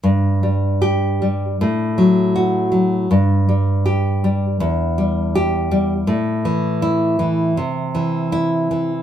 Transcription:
0.03 1.56 G2 soft
0.43 1.21 G3 soft
0.82 1.44 G4 medium
1.22 1.60 G3 soft
1.61 3.06 A2 medium
1.98 2.70 F#3 soft
2.36 2.95 F#4 medium
2.72 3.09 F#3 soft
3.11 4.56 G2 medium
3.49 4.23 G3 soft
3.86 4.45 G4 medium
4.24 4.60 G3 soft
4.60 6.03 E2 medium
4.98 5.70 G3 soft
5.35 5.93 G4 medium
5.71 6.08 G3 medium
6.07 7.52 A2 medium
6.45 7.18 E3 soft
6.82 7.42 E4 medium
7.19 7.56 E3 soft
7.57 9.03 C3 medium
7.95 8.70 E3 soft
8.32 8.92 E4 medium
8.71 9.03 E3 soft

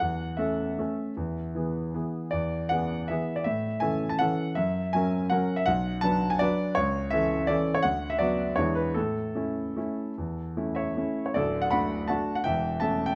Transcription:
0.00 0.38 E2 soft
0.00 0.38 F#5 medium
0.37 0.75 A3 soft
0.37 0.75 C#4 soft
0.37 0.75 A4 soft
0.37 1.93 E5 soft
0.79 1.14 A3 soft
0.79 1.14 C#4 soft
0.79 1.14 A4 soft
1.17 1.54 E2 soft
1.55 1.90 E3 soft
1.55 1.91 B3 soft
1.55 1.91 G#4 soft
1.94 2.29 E3 soft
1.94 2.29 B3 soft
1.94 2.29 G#4 soft
2.31 2.70 E2 soft
2.31 2.70 D5 medium
2.69 3.06 E3 soft
2.69 3.06 B3 soft
2.69 3.06 G#4 soft
2.69 3.09 F#5 medium
3.08 3.43 E3 soft
3.08 3.43 B3 soft
3.08 3.43 G#4 soft
3.08 3.36 E5 medium
3.36 3.45 D5 medium
3.44 3.81 A2 soft
3.44 3.81 E5 medium
3.80 4.16 E3 soft
3.80 4.16 C#4 soft
3.80 4.16 A4 soft
3.80 4.09 G#5 medium
4.09 4.20 A5 medium
4.19 4.54 E3 soft
4.19 4.54 C#4 soft
4.19 4.54 A4 soft
4.19 4.57 F#5 medium
4.55 4.93 F#2 soft
4.55 4.93 E5 medium
4.93 5.28 F#3 soft
4.93 5.28 C#4 soft
4.93 5.29 A#4 soft
4.93 5.31 G#5 medium
5.30 5.64 F#3 soft
5.30 5.64 C#4 soft
5.30 5.65 A#4 soft
5.30 5.58 F#5 medium
5.56 5.67 E5 medium
5.66 6.02 B1 medium
5.66 6.02 F#5 medium
6.01 6.37 F#3 soft
6.01 6.37 D4 soft
6.01 6.38 B4 soft
6.01 6.31 A5 medium
6.30 6.40 G#5 medium
6.39 6.74 F#3 soft
6.39 6.74 D4 soft
6.39 6.74 B4 soft
6.39 6.77 D5 medium
6.75 7.12 C#2 medium
6.75 7.12 C#5 medium
7.10 7.45 E3 soft
7.10 7.45 C#4 soft
7.10 7.46 A4 soft
7.10 7.48 E5 medium
7.47 7.80 E3 soft
7.47 7.81 C#4 soft
7.47 7.81 A4 soft
7.47 7.75 D5 medium
7.74 7.84 C#5 medium
7.83 8.19 D2 soft
7.83 8.10 F#5 medium
8.10 8.19 E5 medium
8.19 8.53 F#3 soft
8.19 8.54 B3 soft
8.19 8.54 F#4 soft
8.19 8.56 D5 medium
8.56 8.95 E2 soft
8.56 8.92 G#3 soft
8.56 8.93 D4 soft
8.56 8.93 E4 soft
8.56 8.76 C#5 medium
8.75 8.95 B4 medium
8.94 9.34 A2 soft
8.94 10.96 A4 medium
9.35 9.72 A3 soft
9.35 9.73 C#4 soft
9.35 9.73 E4 soft
9.76 10.13 A3 soft
9.76 10.13 C#4 soft
9.76 10.14 E4 soft
10.18 10.55 E2 soft
10.57 10.93 A3 soft
10.57 10.93 C#4 soft
10.57 10.93 E4 soft
10.75 11.24 C#5 soft
10.75 11.27 E5 medium
10.97 11.33 A3 soft
10.97 11.33 C#4 soft
10.97 11.33 E4 soft
11.26 11.36 C#5 soft
11.34 11.72 D1 soft
11.34 11.72 D2 soft
11.34 11.62 A4 medium
11.34 11.63 D5 medium
11.62 11.70 F#5 medium
11.71 12.06 A3 soft
11.71 12.06 D4 soft
11.71 12.07 F#4 soft
11.71 12.07 F#5 medium
11.71 12.09 B5 medium
12.08 12.42 A3 soft
12.08 12.42 D4 soft
12.08 12.42 F#4 soft
12.08 12.34 F#5 soft
12.08 12.36 A5 medium
12.35 12.45 F#5 medium
12.44 12.80 E1 soft
12.44 12.80 E2 soft
12.44 12.78 E5 medium
12.44 12.80 G5 medium
12.80 13.13 A3 soft
12.80 13.14 C#4 soft
12.80 13.14 A4 soft
12.80 13.06 E5 medium
12.80 13.07 A5 medium
13.06 13.15 G5 medium

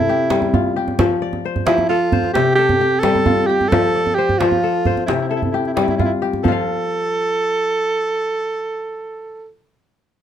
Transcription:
0.00 1.04 C3 medium
0.00 0.76 E4 medium
0.00 1.18 A4 medium
0.00 0.59 C5 medium
0.09 0.76 G4 medium
0.30 1.04 G3 medium
0.30 djembe slap medium
0.42 djembe tone soft
0.54 2.05 F4 medium
0.54 djembe bass medium
0.76 2.18 G4 medium
0.88 djembe tone medium
0.99 1.66 F3 medium
0.99 djembe slap medium
0.99 djembe bass medium
1.22 2.33 D5 medium
1.33 djembe tone medium
1.45 2.12 C5 medium
1.45 djembe slap soft
1.56 djembe slap soft
1.56 djembe bass medium
1.66 2.41 F3 medium
1.66 1.88 E4 medium
1.66 djembe slap medium
1.78 djembe slap soft
1.78 djembe tone medium
1.89 2.32 F4 medium
1.89 2.58 A4 medium
2.12 3.32 C5 medium
2.12 djembe bass medium
2.24 djembe tone soft
2.34 3.77 C3 medium
2.34 2.54 G4 medium
2.34 djembe slap medium
2.55 3.01 G4 loud
2.55 3.90 A4 medium
2.69 djembe tone medium
2.69 djembe bass medium
2.81 3.49 G4 medium
2.99 3.48 A4 loud
2.99 djembe slap medium
3.04 3.77 G3 medium
3.15 djembe tone medium
3.26 4.77 F4 medium
3.26 djembe bass medium
3.46 3.70 G4 medium
3.46 4.91 G4 medium
3.61 djembe tone soft
3.69 4.40 F3 medium
3.69 4.16 A4 loud
3.69 djembe slap medium
3.69 djembe bass medium
3.96 5.06 D5 medium
4.06 djembe tone soft
4.15 4.40 G4 medium
4.15 4.86 C5 medium
4.29 djembe slap soft
4.29 djembe bass medium
4.38 5.13 F3 medium
4.38 5.06 F4 medium
4.38 djembe slap medium
4.52 djembe tone soft
4.64 5.30 A4 medium
4.85 6.05 C5 medium
4.85 djembe slap soft
4.85 djembe bass medium
4.97 djembe tone soft
5.06 6.50 C3 medium
5.06 5.13 E4 medium
5.06 djembe slap medium
5.14 5.20 E4 soft
5.20 5.28 E4 medium
5.20 djembe slap soft
5.29 5.35 E4 soft
5.29 6.62 A4 medium
5.36 5.43 E4 medium
5.42 5.51 E4 soft
5.42 djembe bass soft
5.51 5.57 E4 soft
5.51 6.22 G4 medium
5.58 5.66 E4 soft
5.65 5.73 E4 medium
5.65 djembe slap soft
5.74 6.50 G3 medium
5.74 5.81 E4 soft
5.74 djembe slap medium
5.81 5.88 E4 medium
5.88 5.96 E4 soft
5.88 djembe tone soft
5.97 6.04 E4 medium
5.97 6.48 F4 medium
5.97 djembe slap soft
5.97 djembe bass medium
6.05 6.12 E4 soft
6.11 djembe slap soft
6.22 7.63 G4 medium
6.33 djembe slap soft
6.33 djembe tone soft
6.43 9.51 F3 medium
6.43 9.47 A4 medium
6.43 djembe bass medium
6.48 9.55 F4 medium
6.48 9.59 F5 medium

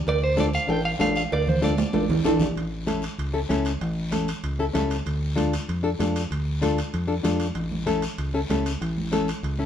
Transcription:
0.07 0.57 D2 loud
0.07 0.23 D5 medium
0.07 cowbell loud
0.07 high conga soft
0.07 long guiro medium
0.24 0.38 C5 medium
0.37 0.48 D4 medium
0.37 0.48 F4 medium
0.37 0.49 A4 medium
0.37 0.45 D5 medium
0.37 cowbell medium
0.37 high conga medium
0.37 short guiro medium
0.53 0.70 F5 medium
0.53 short guiro medium
0.67 0.94 A1 loud
0.67 0.79 D4 medium
0.67 0.79 F4 medium
0.67 0.80 A4 medium
0.67 0.85 G5 loud
0.67 cowbell medium
0.67 high conga soft
0.67 long guiro medium
0.85 0.90 F5 loud
0.99 1.25 A1 medium
0.99 1.22 D4 medium
0.99 1.22 F4 medium
0.99 1.22 A4 medium
0.99 1.15 F5 medium
0.99 cowbell medium
0.99 high conga medium
0.99 low timbale medium
0.99 short guiro medium
1.15 1.22 F5 medium
1.15 short guiro medium
1.31 1.82 D2 loud
1.31 1.49 D5 medium
1.31 cowbell loud
1.31 high conga soft
1.31 long guiro medium
1.47 1.63 C5 medium
1.47 low conga medium
1.62 1.73 D4 medium
1.62 1.73 F4 medium
1.62 1.73 A4 medium
1.62 2.37 D5 medium
1.62 cowbell medium
1.62 high conga medium
1.62 short guiro medium
1.78 high conga loud
1.78 short guiro medium
1.93 2.19 A1 loud
1.93 2.05 D4 medium
1.93 2.05 F4 medium
1.93 2.05 A4 medium
1.93 cowbell medium
1.93 high conga medium
1.93 long guiro medium
2.09 low conga loud
2.09 high timbale medium
2.24 2.50 A1 medium
2.24 2.47 D4 medium
2.24 2.47 F4 medium
2.24 2.47 A4 loud
2.24 cowbell medium
2.24 low conga medium
2.24 high timbale medium
2.24 short guiro medium
2.39 low conga medium
2.39 low timbale medium
2.39 short guiro medium
2.56 3.06 A1 loud
2.56 high timbale medium
2.56 long guiro medium
2.87 3.03 C#4 medium
2.87 3.04 E4 medium
2.87 3.04 A4 medium
2.87 high conga medium
2.87 high timbale medium
2.87 short guiro medium
3.02 high timbale medium
3.02 short guiro medium
3.18 3.43 C#2 medium
3.18 high timbale medium
3.18 long guiro medium
3.33 3.39 C#4 medium
3.33 3.39 E4 medium
3.33 3.40 A4 medium
3.49 3.75 C#2 medium
3.49 3.71 C#4 medium
3.49 3.72 E4 medium
3.49 3.72 A4 medium
3.49 high conga medium
3.49 high timbale medium
3.49 short guiro medium
3.65 high timbale medium
3.65 short guiro medium
3.81 4.31 A1 loud
3.81 high timbale medium
3.81 long guiro medium
4.11 4.28 C#4 medium
4.11 4.29 E4 medium
4.11 4.29 A4 medium
4.11 high conga medium
4.11 high timbale medium
4.11 short guiro medium
4.28 high timbale medium
4.28 short guiro medium
4.43 4.68 C#2 medium
4.43 high timbale medium
4.43 long guiro medium
4.59 4.65 C#4 medium
4.59 4.65 E4 medium
4.59 4.65 A4 medium
4.74 5.00 C#2 medium
4.74 4.96 C#4 medium
4.74 4.97 E4 medium
4.74 4.97 A4 medium
4.74 high conga medium
4.74 high timbale medium
4.74 low timbale medium
4.74 short guiro medium
4.90 high timbale medium
4.90 short guiro medium
5.06 5.56 D2 loud
5.06 high timbale medium
5.06 long guiro medium
5.36 5.53 D4 medium
5.36 5.53 F4 medium
5.36 5.53 A4 medium
5.36 high conga medium
5.36 high timbale medium
5.36 short guiro medium
5.53 high timbale medium
5.53 short guiro medium
5.69 5.94 F2 medium
5.69 high timbale medium
5.69 long guiro medium
5.83 5.89 D4 medium
5.83 5.89 F4 medium
5.83 5.89 A4 medium
5.99 6.24 F2 medium
5.99 6.21 D4 medium
5.99 6.22 F4 medium
5.99 6.22 A4 medium
5.99 high conga medium
5.99 high timbale medium
5.99 low timbale medium
5.99 short guiro medium
6.16 high timbale medium
6.16 short guiro medium
6.31 6.81 D2 loud
6.31 high timbale medium
6.31 long guiro medium
6.62 6.78 D4 medium
6.62 6.79 F4 medium
6.62 6.79 A4 medium
6.62 high conga medium
6.62 high timbale medium
6.62 short guiro medium
6.78 high timbale medium
6.78 short guiro medium
6.94 7.19 F2 medium
6.94 high timbale medium
6.94 long guiro medium
7.07 7.14 D4 medium
7.07 7.14 F4 medium
7.07 7.14 A4 medium
7.23 7.49 F2 medium
7.23 7.46 D4 medium
7.23 7.46 F4 medium
7.23 7.46 A4 medium
7.23 high conga medium
7.23 high timbale medium
7.23 low timbale medium
7.23 short guiro medium
7.40 high timbale medium
7.40 short guiro medium
7.55 8.06 A1 loud
7.55 high timbale medium
7.55 long guiro medium
7.72 high conga medium
7.86 8.03 C#4 medium
7.86 8.03 E4 medium
7.86 8.03 A4 medium
7.86 high conga medium
7.86 high timbale medium
7.86 short guiro medium
8.02 high timbale medium
8.02 short guiro medium
8.18 8.43 C#2 medium
8.18 high timbale medium
8.18 long guiro medium
8.34 8.40 C#4 medium
8.34 8.40 E4 medium
8.34 8.40 A4 medium
8.49 8.75 C#2 medium
8.49 8.72 C#4 medium
8.49 8.72 E4 medium
8.49 8.72 A4 medium
8.49 high conga medium
8.49 high timbale medium
8.49 low timbale medium
8.49 short guiro medium
8.66 high timbale medium
8.66 short guiro medium
8.81 9.31 A1 loud
8.81 high timbale medium
8.81 long guiro medium
8.97 high conga medium
9.12 9.28 C#4 medium
9.12 9.29 E4 medium
9.12 9.29 A4 medium
9.12 high conga medium
9.12 high timbale medium
9.12 short guiro medium
9.28 high timbale medium
9.28 short guiro medium
9.43 9.66 C#2 medium
9.43 high timbale medium
9.43 long guiro medium
9.59 9.64 C#4 medium
9.59 9.65 E4 medium
9.59 9.65 A4 medium

